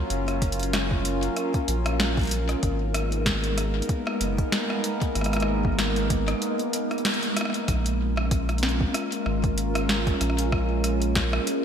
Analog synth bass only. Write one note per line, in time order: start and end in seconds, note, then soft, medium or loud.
0.10 1.29 F#1 loud
1.68 2.55 A#1 medium
2.63 3.82 G#1 loud
4.21 4.43 F#1 medium
5.16 6.34 G#1 loud
7.68 8.87 A#1 loud
9.26 10.13 G#1 medium
10.21 11.40 A#1 loud